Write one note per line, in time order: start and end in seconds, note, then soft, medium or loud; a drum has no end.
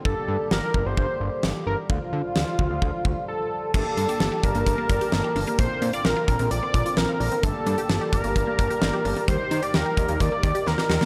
0.00 1.86 D3 medium
0.05 0.14 G1 loud
0.05 3.71 G3 medium
0.05 1.88 A#3 medium
0.05 1.88 G4 medium
0.05 0.48 A4 loud
0.05 kick loud
0.28 0.37 G2 loud
0.51 0.60 G1 loud
0.51 0.88 A#4 loud
0.51 snare loud
0.74 0.84 G1 loud
0.74 kick medium
0.86 0.95 G1 loud
0.86 1.44 C5 loud
0.97 1.07 G1 loud
0.97 kick medium
1.20 1.30 G1 loud
1.43 1.53 G1 loud
1.43 snare loud
1.66 1.76 G1 loud
1.66 1.77 A#4 loud
1.90 1.99 D2 loud
1.90 3.72 D3 medium
1.90 3.72 F3 medium
1.90 3.24 F4 loud
1.90 3.72 F4 medium
1.90 kick loud
2.13 2.22 D3 loud
2.36 2.45 D2 loud
2.36 snare loud
2.59 2.68 D2 loud
2.59 kick medium
2.70 2.80 D2 medium
2.82 2.91 D2 loud
2.82 kick medium
3.05 3.14 D2 medium
3.05 kick medium
3.28 3.71 A4 medium
3.74 3.83 G1 loud
3.74 9.24 D3 medium
3.74 5.57 G3 medium
3.74 3.85 A3 medium
3.74 5.55 A#3 medium
3.74 7.40 A#3 medium
3.74 5.55 G4 medium
3.74 5.57 G4 medium
3.74 4.45 A4 loud
3.74 5.55 A5 medium
3.74 kick loud
3.74 crash loud
3.97 4.07 G2 loud
3.97 4.08 D4 medium
3.97 closed hi-hat medium
4.09 4.19 G4 loud
4.09 closed hi-hat medium
4.20 4.30 G1 loud
4.20 4.31 A4 medium
4.20 snare loud
4.32 4.42 G4 medium
4.43 4.53 G1 loud
4.43 4.54 D4 medium
4.43 5.58 A#4 loud
4.43 kick medium
4.43 closed hi-hat medium
4.55 4.64 G1 loud
4.55 4.66 A#3 medium
4.55 closed hi-hat medium
4.66 4.76 G1 loud
4.66 kick medium
4.66 closed hi-hat medium
4.78 4.89 A#3 medium
4.90 4.99 G1 loud
4.90 5.00 D4 medium
4.90 kick loud
4.90 closed hi-hat medium
5.01 5.12 G4 medium
5.01 closed hi-hat medium
5.12 5.22 G1 loud
5.12 snare loud
5.24 5.35 G4 medium
5.35 5.45 G1 loud
5.35 5.46 D4 medium
5.35 open hi-hat medium
5.47 5.58 A#3 medium
5.47 closed hi-hat soft
5.59 5.68 A#1 loud
5.59 5.69 A#3 medium
5.59 7.41 C4 medium
5.59 7.40 C4 medium
5.59 7.40 D4 medium
5.59 7.42 F4 medium
5.59 7.40 A#4 medium
5.59 5.91 C5 loud
5.59 kick loud
5.59 closed hi-hat medium
5.82 5.91 A#2 loud
5.82 5.92 D4 medium
5.82 closed hi-hat medium
5.93 6.04 F4 medium
5.93 6.06 D5 medium
5.93 closed hi-hat medium
6.05 6.14 A#1 loud
6.05 6.50 A#4 medium
6.05 6.16 A#4 medium
6.05 snare loud
6.17 6.27 F4 medium
6.28 6.37 A#1 loud
6.28 6.38 D4 medium
6.28 kick medium
6.28 closed hi-hat medium
6.39 6.49 A#1 loud
6.39 6.50 C4 medium
6.39 closed hi-hat medium
6.51 6.60 A#1 loud
6.51 6.99 D5 loud
6.51 closed hi-hat medium
6.63 6.73 C4 medium
6.74 6.83 A#1 loud
6.74 6.85 D4 medium
6.74 kick loud
6.74 closed hi-hat medium
6.86 6.96 F4 medium
6.86 closed hi-hat medium
6.97 7.07 A#1 loud
6.97 7.45 A#4 medium
6.97 snare loud
7.09 7.19 F4 medium
7.20 7.30 A#1 loud
7.20 7.31 D4 medium
7.20 open hi-hat medium
7.32 7.42 C4 medium
7.32 closed hi-hat soft
7.43 7.53 G1 loud
7.43 9.26 G3 medium
7.43 7.54 A3 medium
7.43 11.05 A#3 medium
7.43 9.24 A#3 medium
7.43 11.05 G4 medium
7.43 9.24 G4 medium
7.43 8.12 A4 loud
7.43 9.24 A5 medium
7.43 kick loud
7.43 closed hi-hat medium
7.66 7.76 G2 loud
7.66 7.77 D4 medium
7.66 closed hi-hat medium
7.78 7.88 G4 loud
7.78 closed hi-hat medium
7.89 7.99 G1 loud
7.89 8.00 A4 medium
7.89 snare loud
8.01 8.12 G4 medium
8.13 8.22 G1 loud
8.13 8.23 D4 medium
8.13 9.24 A#4 loud
8.13 kick medium
8.13 closed hi-hat medium
8.24 8.33 G1 medium
8.24 8.35 A#3 medium
8.24 closed hi-hat medium
8.36 8.45 G1 loud
8.36 kick medium
8.36 closed hi-hat medium
8.47 8.58 A#3 medium
8.59 8.68 G1 loud
8.59 8.69 D4 medium
8.59 kick medium
8.59 closed hi-hat medium
8.70 8.81 G4 medium
8.70 closed hi-hat medium
8.82 8.91 G1 loud
8.82 snare loud
8.93 9.04 G4 medium
9.05 9.14 G1 loud
9.05 9.16 D4 medium
9.05 open hi-hat medium
9.16 9.27 A#3 medium
9.16 closed hi-hat soft
9.28 9.37 D#2 loud
9.28 11.05 D#3 medium
9.28 9.39 G3 medium
9.28 11.05 G3 medium
9.28 11.05 D#4 medium
9.28 11.05 G4 medium
9.28 11.05 A#4 medium
9.28 9.64 C5 loud
9.28 kick loud
9.28 closed hi-hat medium
9.51 9.60 D#3 loud
9.51 9.62 D#4 medium
9.51 closed hi-hat medium
9.62 9.73 G4 medium
9.62 9.76 D5 medium
9.62 closed hi-hat medium
9.74 9.84 D#2 loud
9.74 10.22 A#4 loud
9.74 9.85 G5 medium
9.74 snare loud
9.86 9.96 G4 medium
9.97 10.07 D#2 loud
9.97 10.08 D#4 loud
9.97 kick medium
9.97 closed hi-hat medium
10.09 10.18 D#2 medium
10.09 10.19 A#3 medium
10.09 closed hi-hat medium
10.20 10.30 D#2 loud
10.20 10.68 D5 loud
10.20 kick medium
10.20 closed hi-hat medium
10.32 10.42 A#3 medium
10.43 10.53 D#2 loud
10.43 10.54 D#4 medium
10.43 kick loud
10.43 closed hi-hat medium
10.55 10.65 G4 medium
10.55 closed hi-hat medium
10.66 10.76 D#2 loud
10.66 11.05 A#4 loud
10.66 snare medium
10.78 10.89 G4 medium
10.78 snare medium
10.89 10.99 D#2 loud
10.89 11.00 D#4 medium
10.89 snare medium
11.01 11.05 A#3 medium
11.01 snare medium